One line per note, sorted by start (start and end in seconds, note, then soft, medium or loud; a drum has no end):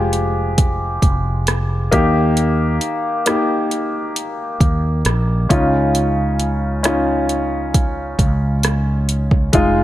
0.00 0.99 F1 medium
0.00 1.94 G#3 medium
0.00 1.94 F4 medium
0.00 1.93 G4 medium
0.00 1.95 G#4 soft
0.00 1.94 C5 medium
0.13 closed hi-hat medium
0.58 kick medium
0.58 closed hi-hat medium
1.02 1.88 F1 medium
1.02 kick medium
1.02 closed hi-hat medium
1.47 cross-stick medium
1.47 closed hi-hat medium
1.91 2.78 D#2 medium
1.91 3.23 D#3 medium
1.91 3.19 A#3 medium
1.91 3.20 D#4 medium
1.91 3.20 G4 medium
1.91 kick medium
1.91 closed hi-hat medium
2.37 closed hi-hat medium
2.81 closed hi-hat medium
3.26 4.97 A#3 medium
3.26 4.97 D#4 medium
3.26 4.97 G4 medium
3.26 cross-stick loud
3.26 closed hi-hat medium
3.71 closed hi-hat medium
4.16 closed hi-hat medium
4.60 5.02 D#2 medium
4.60 kick medium
4.60 closed hi-hat soft
5.05 5.47 A#1 medium
5.05 cross-stick medium
5.05 closed hi-hat medium
5.49 8.15 C#2 loud
5.49 6.81 C#3 medium
5.49 6.78 C#4 medium
5.49 6.78 D#4 medium
5.49 6.78 F4 medium
5.49 kick medium
5.49 closed hi-hat medium
5.95 closed hi-hat medium
6.40 closed hi-hat medium
6.83 8.54 C#4 medium
6.83 8.55 D#4 medium
6.83 8.55 F4 medium
6.83 cross-stick loud
6.83 closed hi-hat medium
7.29 closed hi-hat medium
7.74 kick medium
7.74 closed hi-hat medium
8.18 9.49 C#2 medium
8.18 kick medium
8.18 closed hi-hat medium
8.63 cross-stick medium
8.63 closed hi-hat medium
9.09 closed hi-hat medium
9.31 kick medium
9.53 9.84 F1 medium
9.53 9.84 G#3 medium
9.53 9.84 D#4 medium
9.53 9.84 F4 medium
9.53 kick medium
9.53 closed hi-hat medium